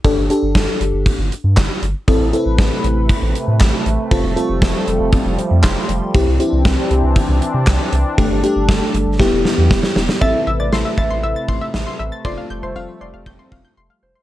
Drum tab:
HH |x-x-x-x-x-x-x-x-|x-x-x-x-x-x-x-x-|x-x-x-x-x-x-x-x-|x-x-x-x-x-x-x-x-|
CP |------------x---|------------x---|------------x---|------------x---|
SD |----o-------o---|----o-------o---|----o-------o---|----o-------o---|
BD |o---o---o---o---|o---o---o---o---|o---o---o---o---|o---o---o---o---|

HH |x-x-x-x---------|----------------|----------------|
CP |----------------|----------------|----------------|
SD |----o---o-o-oooo|----o-------o---|----------------|
BD |o---o---o---o---|o-----o---o-----|o-------o-o-----|